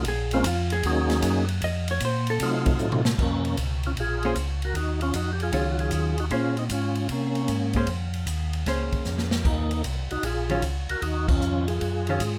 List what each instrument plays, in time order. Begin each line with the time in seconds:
0.05 tonewheel organ A#1, hollow-body jazz guitar G#4, kick, ride
0.31 tonewheel organ G#3 A#3 C4 C#4 F4, hollow-body jazz guitar C4, ride
0.44 tonewheel organ F2, hollow-body jazz guitar F4, kick, hi-hat pedal, ride
0.70 hollow-body jazz guitar G#4, ride
0.83 tonewheel organ D#2 F#3 A#3 C#4 D#4 G#4, hollow-body jazz guitar F#4, kick, ride
1.10 snare, ride
1.22 tonewheel organ F#2, kick, hi-hat pedal, ride
1.48 ride
1.62 tonewheel organ F2, hollow-body jazz guitar D#5, kick, ride
1.88 hollow-body jazz guitar C#5, ride
2.00 tonewheel organ A#2, kick, hi-hat pedal, ride
2.05 hollow-body jazz guitar C5
2.27 hollow-body jazz guitar A4, ride
2.40 tonewheel organ C3 F#3 A3 C4 D#4 F4, kick, ride
2.66 kick, ride
2.79 tonewheel organ A2, hi-hat pedal
2.92 mid tom
3.05 snare
3.18 tonewheel organ F2 A#3 C#4, kick, crash
3.45 ride
3.57 tonewheel organ C#2, kick, hi-hat pedal, ride
3.83 tonewheel organ C#4 F4, ride
3.96 tonewheel organ A#1 F4 G#4, kick, ride
4.23 hollow-body jazz guitar A#3 C#4 G#4 C5, ride
4.35 tonewheel organ C#2, kick, hi-hat pedal, ride
4.62 tonewheel organ F#4 A#4, ride
4.74 tonewheel organ D#2 D#4 F#4, kick, ride
5.01 tonewheel organ C#4 F4, ride
5.14 tonewheel organ F2 D#4 F#4, kick, hi-hat pedal, ride
5.33 tonewheel organ G4
5.40 tonewheel organ F4 G#4, ride
5.52 tonewheel organ C#2, hollow-body jazz guitar D#3 F#3 C#4 F4, kick, ride
5.72 tonewheel organ F#4
5.79 tonewheel organ F4 G#4, ride
5.91 tonewheel organ D#2, kick, hi-hat pedal, ride
6.18 tonewheel organ D#4 F#4, ride
6.30 tonewheel organ A#2 C#4 F4, hollow-body jazz guitar A#3 C#4 G#4 C5, kick, ride
6.57 tonewheel organ C4 D#4, ride
6.69 tonewheel organ G#2 C#4 F4, kick, hi-hat pedal, ride
6.95 ride
7.09 tonewheel organ C3 A#3 C#4, kick, ride
7.35 ride
7.48 tonewheel organ G#2, kick, hi-hat pedal, ride
7.73 hollow-body jazz guitar A#3 C#4 G#4 C5, kick, ride
7.87 tonewheel organ F2, kick, ride
8.13 ride
8.26 tonewheel organ D#2, kick, hi-hat pedal, ride
8.53 ride
8.66 tonewheel organ C#2, hollow-body jazz guitar A#3 C#4 G#4 C5, kick, snare, ride
8.92 tonewheel organ C#2, kick, ride
9.05 tonewheel organ F2, snare, hi-hat pedal
9.18 snare
9.31 snare
9.44 tonewheel organ D#2 A#3 D#4, kick, crash
9.71 ride
9.84 tonewheel organ C2, kick, hi-hat pedal, ride
10.11 tonewheel organ C2 D#4 F#4, ride
10.23 tonewheel organ A#1 F4 G#4, kick, ride
10.49 hollow-body jazz guitar D#3 F#3 C#4 F4, ride
10.62 tonewheel organ C#2, kick, hi-hat pedal, ride
10.89 tonewheel organ C#2 F#4 A#4, ride
11.02 tonewheel organ D#2 D#4 F#4, kick, ride
11.28 tonewheel organ C#4 F4, kick, crash
11.41 tonewheel organ F2, hi-hat pedal
11.68 tonewheel organ F4 G#4, ride
11.81 tonewheel organ F#2, kick, ride
12.07 hollow-body jazz guitar D#3 F#3 C#4 F4, ride
12.20 tonewheel organ G#2, kick, hi-hat pedal, ride